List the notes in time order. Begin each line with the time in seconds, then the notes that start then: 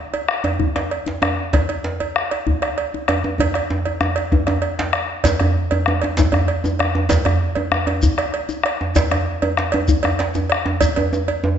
0.14 cowbell, djembe slap, djembe tone
0.29 bombo rim, djembe slap
0.44 cowbell, djembe slap, djembe tone
0.60 bombo low, djembe tone, djembe bass
0.76 bombo rim, cowbell, djembe slap
0.91 cowbell, djembe slap
1.06 djembe slap, djembe tone
1.22 bombo rim, cowbell, djembe slap, djembe tone
1.39 djembe slap
1.53 bombo low, cowbell, djembe slap, djembe tone, djembe bass
1.69 cowbell, djembe slap
1.84 djembe slap
2.00 cowbell, djembe slap, djembe tone
2.16 bombo rim, djembe slap
2.31 cowbell, djembe slap
2.47 bombo low, djembe tone, djembe bass
2.62 bombo rim, cowbell
2.78 cowbell, djembe slap
2.94 djembe slap, djembe tone
3.08 bombo rim, cowbell, djembe slap, djembe tone
3.24 djembe slap, djembe tone
3.39 bombo low, cowbell, djembe slap, djembe tone, djembe bass
3.54 bombo rim, cowbell, djembe slap
3.70 bombo rim, djembe tone
3.85 cowbell, djembe slap, djembe tone
4.01 bombo rim, djembe tone
4.16 cowbell, djembe slap
4.32 bombo rim, bombo low, djembe tone, djembe bass
4.47 bombo rim, cowbell, djembe tone
4.62 bombo rim, cowbell
4.79 bombo rim, djembe slap, djembe tone
4.93 bombo rim, cowbell
5.24 bombo low, cowbell, djembe slap, djembe tone, djembe bass, shekere
5.40 bombo rim, cowbell, djembe bass
5.71 cowbell, djembe slap, djembe tone
5.86 bombo rim, djembe slap, djembe tone
6.02 cowbell, djembe slap, djembe tone
6.17 bombo low, djembe slap, djembe tone, djembe bass, shekere
6.32 bombo rim, cowbell, djembe bass
6.48 cowbell, djembe slap
6.64 djembe slap, djembe tone, shekere
6.79 bombo rim, cowbell, djembe slap, djembe tone
6.95 djembe tone
7.09 bombo low, cowbell, djembe slap, djembe tone, djembe bass, shekere
7.25 bombo rim, cowbell, djembe slap, djembe bass
7.55 cowbell, djembe slap, djembe tone
7.72 bombo rim, djembe slap, djembe tone
7.87 cowbell, djembe slap, djembe tone
8.02 bombo low, djembe tone, djembe bass, shekere
8.18 bombo rim, cowbell
8.34 cowbell, djembe slap
8.49 djembe slap, djembe tone, shekere
8.63 bombo rim, cowbell, djembe slap
8.81 djembe slap, djembe tone
8.95 bombo low, cowbell, djembe slap, djembe tone, djembe bass, shekere
9.11 bombo rim, cowbell, djembe slap, djembe tone
9.42 cowbell, djembe slap, djembe tone
9.57 bombo rim, djembe slap
9.72 cowbell, djembe slap, djembe tone
9.88 bombo low, djembe tone, djembe bass, shekere
10.03 bombo rim, cowbell, djembe tone
10.19 cowbell, djembe slap
10.34 djembe slap, djembe tone, shekere
10.50 bombo rim, cowbell, djembe slap
10.66 djembe tone
10.81 bombo low, cowbell, djembe slap, djembe tone, djembe bass, shekere
10.96 cowbell, djembe slap, djembe tone
11.12 bombo rim, djembe slap, djembe tone, shekere
11.28 cowbell, djembe slap, djembe tone
11.43 djembe slap, djembe tone